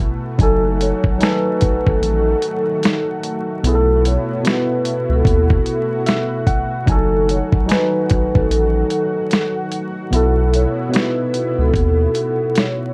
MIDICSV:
0, 0, Header, 1, 6, 480
1, 0, Start_track
1, 0, Tempo, 810811
1, 231, Time_signature, 4, 2, 24, 8
1, 7658, End_track
2, 0, Start_track
2, 0, Title_t, "Vibraphone"
2, 0, Program_c, 0, 11
2, 249, Note_on_c, 0, 69, 96
2, 485, Note_on_c, 0, 73, 99
2, 487, Note_off_c, 0, 69, 0
2, 725, Note_off_c, 0, 73, 0
2, 726, Note_on_c, 0, 71, 99
2, 1115, Note_on_c, 0, 69, 81
2, 1117, Note_off_c, 0, 71, 0
2, 1803, Note_off_c, 0, 69, 0
2, 2167, Note_on_c, 0, 69, 98
2, 2406, Note_off_c, 0, 69, 0
2, 2411, Note_on_c, 0, 73, 108
2, 2625, Note_off_c, 0, 73, 0
2, 2647, Note_on_c, 0, 71, 92
2, 3037, Note_off_c, 0, 71, 0
2, 3038, Note_on_c, 0, 69, 77
2, 3818, Note_off_c, 0, 69, 0
2, 4088, Note_on_c, 0, 69, 92
2, 4325, Note_on_c, 0, 73, 95
2, 4326, Note_off_c, 0, 69, 0
2, 4430, Note_off_c, 0, 73, 0
2, 4565, Note_on_c, 0, 71, 98
2, 4952, Note_on_c, 0, 69, 74
2, 4956, Note_off_c, 0, 71, 0
2, 5641, Note_off_c, 0, 69, 0
2, 6008, Note_on_c, 0, 69, 91
2, 6247, Note_off_c, 0, 69, 0
2, 6247, Note_on_c, 0, 73, 89
2, 6486, Note_off_c, 0, 73, 0
2, 6486, Note_on_c, 0, 71, 88
2, 6875, Note_on_c, 0, 69, 93
2, 6877, Note_off_c, 0, 71, 0
2, 7448, Note_on_c, 0, 73, 94
2, 7457, Note_off_c, 0, 69, 0
2, 7658, Note_off_c, 0, 73, 0
2, 7658, End_track
3, 0, Start_track
3, 0, Title_t, "Tine electric piano"
3, 0, Program_c, 1, 4
3, 0, Control_c, 1, 64, 127
3, 0, Note_on_c, 1, 80, 75
3, 225, Note_on_c, 1, 54, 82
3, 234, Note_on_c, 1, 63, 64
3, 238, Control_c, 1, 64, 0
3, 240, Note_off_c, 1, 80, 0
3, 245, Note_on_c, 1, 80, 67
3, 255, Note_on_c, 1, 69, 87
3, 332, Control_c, 1, 64, 127
3, 637, Note_off_c, 1, 54, 0
3, 641, Note_off_c, 1, 63, 0
3, 647, Note_off_c, 1, 80, 0
3, 652, Note_off_c, 1, 69, 0
3, 701, Note_on_c, 1, 54, 69
3, 711, Note_on_c, 1, 63, 68
3, 721, Note_on_c, 1, 80, 63
3, 732, Note_on_c, 1, 69, 78
3, 1495, Note_off_c, 1, 54, 0
3, 1500, Note_off_c, 1, 63, 0
3, 1505, Note_off_c, 1, 80, 0
3, 1510, Note_off_c, 1, 69, 0
3, 2150, Note_on_c, 1, 47, 73
3, 2159, Control_c, 1, 64, 0
3, 2161, Note_on_c, 1, 59, 69
3, 2172, Note_on_c, 1, 64, 69
3, 2182, Note_on_c, 1, 68, 67
3, 2214, Note_off_c, 1, 68, 0
3, 2221, Note_on_c, 1, 69, 82
3, 2267, Control_c, 1, 64, 127
3, 2559, Note_off_c, 1, 47, 0
3, 2565, Note_off_c, 1, 59, 0
3, 2570, Note_off_c, 1, 64, 0
3, 2595, Note_off_c, 1, 69, 0
3, 2622, Note_on_c, 1, 47, 73
3, 2634, Note_on_c, 1, 59, 60
3, 2644, Note_on_c, 1, 64, 67
3, 2653, Note_on_c, 1, 66, 75
3, 3415, Note_off_c, 1, 47, 0
3, 3421, Note_off_c, 1, 59, 0
3, 3426, Note_off_c, 1, 64, 0
3, 3431, Note_off_c, 1, 66, 0
3, 3590, Note_on_c, 1, 76, 74
3, 3814, Note_off_c, 1, 76, 0
3, 3830, Note_on_c, 1, 78, 71
3, 4054, Note_off_c, 1, 78, 0
3, 4061, Note_on_c, 1, 54, 73
3, 4072, Note_on_c, 1, 63, 65
3, 4079, Control_c, 1, 64, 0
3, 4082, Note_on_c, 1, 80, 70
3, 4094, Note_on_c, 1, 69, 86
3, 4174, Control_c, 1, 64, 127
3, 4475, Note_off_c, 1, 54, 0
3, 4480, Note_off_c, 1, 63, 0
3, 4485, Note_off_c, 1, 80, 0
3, 4491, Note_off_c, 1, 69, 0
3, 4536, Note_on_c, 1, 54, 72
3, 4548, Note_on_c, 1, 63, 69
3, 4558, Note_on_c, 1, 80, 59
3, 4568, Note_on_c, 1, 71, 72
3, 5333, Note_off_c, 1, 54, 0
3, 5338, Note_off_c, 1, 63, 0
3, 5343, Note_off_c, 1, 80, 0
3, 5349, Note_off_c, 1, 71, 0
3, 5983, Note_on_c, 1, 47, 75
3, 5994, Note_on_c, 1, 59, 72
3, 5999, Control_c, 1, 64, 0
3, 6003, Note_on_c, 1, 64, 75
3, 6015, Note_on_c, 1, 69, 77
3, 6100, Control_c, 1, 64, 127
3, 6396, Note_off_c, 1, 47, 0
3, 6401, Note_off_c, 1, 59, 0
3, 6406, Note_off_c, 1, 64, 0
3, 6412, Note_off_c, 1, 69, 0
3, 6449, Note_on_c, 1, 47, 76
3, 6460, Note_on_c, 1, 59, 71
3, 6471, Note_on_c, 1, 63, 54
3, 6481, Note_on_c, 1, 66, 78
3, 6509, Note_on_c, 1, 64, 67
3, 6518, Note_off_c, 1, 63, 0
3, 7249, Note_off_c, 1, 47, 0
3, 7254, Note_off_c, 1, 59, 0
3, 7265, Note_off_c, 1, 66, 0
3, 7279, Note_off_c, 1, 64, 0
3, 7658, End_track
4, 0, Start_track
4, 0, Title_t, "Analog synth pad"
4, 0, Program_c, 2, 89
4, 0, Note_on_c, 2, 57, 76
4, 0, Note_on_c, 2, 59, 70
4, 0, Note_on_c, 2, 64, 78
4, 0, Note_on_c, 2, 66, 88
4, 209, Note_off_c, 2, 66, 0
4, 212, Note_off_c, 2, 59, 0
4, 212, Note_off_c, 2, 64, 0
4, 229, Note_on_c, 2, 54, 74
4, 229, Note_on_c, 2, 66, 89
4, 230, Note_on_c, 2, 51, 81
4, 2131, Note_off_c, 2, 54, 0
4, 2132, Note_off_c, 2, 51, 0
4, 2148, Note_on_c, 2, 64, 77
4, 2149, Note_on_c, 2, 59, 78
4, 4051, Note_off_c, 2, 59, 0
4, 4051, Note_off_c, 2, 64, 0
4, 4070, Note_on_c, 2, 51, 81
4, 4070, Note_on_c, 2, 54, 78
4, 5972, Note_off_c, 2, 51, 0
4, 5972, Note_off_c, 2, 54, 0
4, 5989, Note_on_c, 2, 59, 74
4, 5989, Note_on_c, 2, 64, 80
4, 7658, Note_off_c, 2, 57, 0
4, 7658, Note_off_c, 2, 59, 0
4, 7658, Note_off_c, 2, 64, 0
4, 7658, Note_off_c, 2, 66, 0
4, 7658, End_track
5, 0, Start_track
5, 0, Title_t, "Analog synth bass"
5, 0, Program_c, 3, 38
5, 231, Note_on_c, 3, 30, 114
5, 549, Note_off_c, 3, 30, 0
5, 1105, Note_on_c, 3, 32, 78
5, 1179, Note_off_c, 3, 32, 0
5, 1192, Note_on_c, 3, 33, 89
5, 1389, Note_off_c, 3, 33, 0
5, 2153, Note_on_c, 3, 35, 106
5, 2470, Note_off_c, 3, 35, 0
5, 3016, Note_on_c, 3, 37, 94
5, 3093, Note_off_c, 3, 37, 0
5, 3108, Note_on_c, 3, 39, 97
5, 3307, Note_off_c, 3, 39, 0
5, 4070, Note_on_c, 3, 30, 102
5, 4388, Note_off_c, 3, 30, 0
5, 4944, Note_on_c, 3, 32, 82
5, 5018, Note_off_c, 3, 32, 0
5, 5034, Note_on_c, 3, 33, 98
5, 5230, Note_off_c, 3, 33, 0
5, 5993, Note_on_c, 3, 35, 113
5, 6310, Note_off_c, 3, 35, 0
5, 6859, Note_on_c, 3, 37, 94
5, 6935, Note_off_c, 3, 37, 0
5, 6948, Note_on_c, 3, 39, 100
5, 7147, Note_off_c, 3, 39, 0
5, 7658, End_track
6, 0, Start_track
6, 0, Title_t, "Drums"
6, 230, Note_on_c, 9, 36, 120
6, 235, Note_on_c, 9, 42, 91
6, 289, Note_off_c, 9, 36, 0
6, 295, Note_off_c, 9, 42, 0
6, 478, Note_on_c, 9, 42, 77
6, 537, Note_off_c, 9, 42, 0
6, 615, Note_on_c, 9, 36, 89
6, 674, Note_off_c, 9, 36, 0
6, 714, Note_on_c, 9, 42, 90
6, 729, Note_on_c, 9, 38, 108
6, 773, Note_off_c, 9, 42, 0
6, 788, Note_off_c, 9, 38, 0
6, 952, Note_on_c, 9, 42, 75
6, 960, Note_on_c, 9, 36, 87
6, 1011, Note_off_c, 9, 42, 0
6, 1019, Note_off_c, 9, 36, 0
6, 1105, Note_on_c, 9, 36, 92
6, 1164, Note_off_c, 9, 36, 0
6, 1200, Note_on_c, 9, 42, 79
6, 1259, Note_off_c, 9, 42, 0
6, 1433, Note_on_c, 9, 42, 60
6, 1492, Note_off_c, 9, 42, 0
6, 1676, Note_on_c, 9, 42, 81
6, 1689, Note_on_c, 9, 38, 118
6, 1735, Note_off_c, 9, 42, 0
6, 1748, Note_off_c, 9, 38, 0
6, 1915, Note_on_c, 9, 42, 59
6, 1974, Note_off_c, 9, 42, 0
6, 2156, Note_on_c, 9, 42, 91
6, 2216, Note_off_c, 9, 42, 0
6, 2399, Note_on_c, 9, 42, 80
6, 2458, Note_off_c, 9, 42, 0
6, 2633, Note_on_c, 9, 42, 97
6, 2648, Note_on_c, 9, 38, 120
6, 2692, Note_off_c, 9, 42, 0
6, 2708, Note_off_c, 9, 38, 0
6, 2872, Note_on_c, 9, 42, 75
6, 2931, Note_off_c, 9, 42, 0
6, 3108, Note_on_c, 9, 36, 106
6, 3119, Note_on_c, 9, 42, 73
6, 3167, Note_off_c, 9, 36, 0
6, 3178, Note_off_c, 9, 42, 0
6, 3257, Note_on_c, 9, 36, 95
6, 3316, Note_off_c, 9, 36, 0
6, 3350, Note_on_c, 9, 42, 64
6, 3409, Note_off_c, 9, 42, 0
6, 3590, Note_on_c, 9, 42, 76
6, 3603, Note_on_c, 9, 38, 123
6, 3649, Note_off_c, 9, 42, 0
6, 3662, Note_off_c, 9, 38, 0
6, 3829, Note_on_c, 9, 36, 85
6, 3830, Note_on_c, 9, 42, 62
6, 3888, Note_off_c, 9, 36, 0
6, 3889, Note_off_c, 9, 42, 0
6, 4069, Note_on_c, 9, 36, 114
6, 4073, Note_on_c, 9, 42, 85
6, 4128, Note_off_c, 9, 36, 0
6, 4132, Note_off_c, 9, 42, 0
6, 4316, Note_on_c, 9, 42, 73
6, 4375, Note_off_c, 9, 42, 0
6, 4454, Note_on_c, 9, 36, 93
6, 4513, Note_off_c, 9, 36, 0
6, 4552, Note_on_c, 9, 42, 90
6, 4567, Note_on_c, 9, 38, 111
6, 4612, Note_off_c, 9, 42, 0
6, 4627, Note_off_c, 9, 38, 0
6, 4792, Note_on_c, 9, 42, 76
6, 4800, Note_on_c, 9, 36, 91
6, 4852, Note_off_c, 9, 42, 0
6, 4859, Note_off_c, 9, 36, 0
6, 4944, Note_on_c, 9, 36, 92
6, 5003, Note_off_c, 9, 36, 0
6, 5039, Note_on_c, 9, 42, 74
6, 5099, Note_off_c, 9, 42, 0
6, 5270, Note_on_c, 9, 42, 60
6, 5330, Note_off_c, 9, 42, 0
6, 5511, Note_on_c, 9, 42, 82
6, 5524, Note_on_c, 9, 38, 115
6, 5570, Note_off_c, 9, 42, 0
6, 5583, Note_off_c, 9, 38, 0
6, 5752, Note_on_c, 9, 42, 59
6, 5811, Note_off_c, 9, 42, 0
6, 5996, Note_on_c, 9, 42, 94
6, 6055, Note_off_c, 9, 42, 0
6, 6237, Note_on_c, 9, 42, 77
6, 6296, Note_off_c, 9, 42, 0
6, 6474, Note_on_c, 9, 42, 89
6, 6489, Note_on_c, 9, 38, 111
6, 6533, Note_off_c, 9, 42, 0
6, 6548, Note_off_c, 9, 38, 0
6, 6713, Note_on_c, 9, 42, 73
6, 6772, Note_off_c, 9, 42, 0
6, 6948, Note_on_c, 9, 36, 101
6, 6959, Note_on_c, 9, 42, 77
6, 7007, Note_off_c, 9, 36, 0
6, 7018, Note_off_c, 9, 42, 0
6, 7192, Note_on_c, 9, 42, 60
6, 7251, Note_off_c, 9, 42, 0
6, 7432, Note_on_c, 9, 42, 78
6, 7445, Note_on_c, 9, 38, 118
6, 7491, Note_off_c, 9, 42, 0
6, 7505, Note_off_c, 9, 38, 0
6, 7658, End_track
0, 0, End_of_file